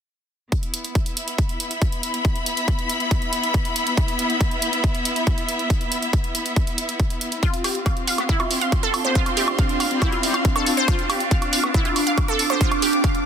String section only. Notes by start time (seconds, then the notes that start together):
0.52 B3 E4
0.97 E5
1.16 B5
7.43 C4
7.54 F4
7.81 F5
8.05 C6
11.37 D6